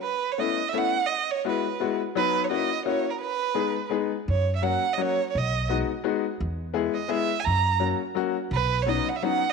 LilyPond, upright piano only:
\new Staff \with { instrumentName = "Upright piano" } { \time 3/4 \key b \major \tempo 4 = 170 r4 <a b cis' e'>8 r8 <a b cis' e'>8 r8 | r4 <gis b e' fis'>8 r8 <gis b e' fis'>8 r8 | <fis b dis' fis'>4 <ais cis' e' fis'>8 r8 <ais cis' e' fis'>8 r8 | r4 <gis b dis' gis'>8 r8 <gis b dis' gis'>8 r8 |
r4 <fis ais cis' fis'>8 r8 <fis ais cis' fis'>8 r8 | r4 <gis b dis' fis'>8 r8 <gis b dis' fis'>8 r8 | r4 <gis b e' gis'>8 r8 <gis b e' gis'>8 r8 | r4 <fis ais cis' fis'>8 r8 <fis ais cis' fis'>8 r8 |
r4 <fis b cis' dis'>8 r8 <fis b cis' dis'>8 r8 | }